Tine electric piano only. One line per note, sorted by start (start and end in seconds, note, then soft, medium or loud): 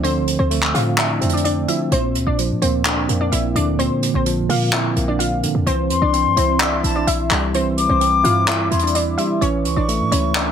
0.00 0.04 D3 medium
0.00 1.21 D3 loud
0.00 0.98 F3 medium
0.00 0.51 A3 medium
0.00 0.74 C4 medium
0.00 0.28 D4 loud
0.51 1.68 A3 medium
0.74 1.20 C4 medium
0.98 1.92 D4 loud
1.21 1.92 C4 loud
1.68 1.92 F3 medium
1.92 3.09 A#2 medium
2.39 3.56 F3 medium
2.62 3.08 A#3 medium
2.86 4.03 C4 loud
3.09 4.26 A#3 medium
3.55 4.72 D3 medium
3.79 4.96 A#2 medium
4.26 5.43 F3 medium
4.49 4.95 A#3 medium
4.73 5.67 C4 medium
4.97 5.67 A#3 medium
5.43 5.67 D3 medium
5.66 6.84 E3 medium
6.13 7.31 C4 medium
6.36 6.82 E4 medium
6.61 7.78 E5 loud
6.84 8.01 E4 medium
7.31 8.48 G3 medium
7.54 8.71 E3 medium
8.01 9.18 C4 medium
8.24 8.70 E4 medium
8.48 9.42 E5 loud
8.72 9.42 E4 medium
9.18 9.41 G3 medium
9.41 10.52 E3 loud
9.88 10.52 A3 medium
10.12 10.52 E4 medium
10.35 10.52 E5 loud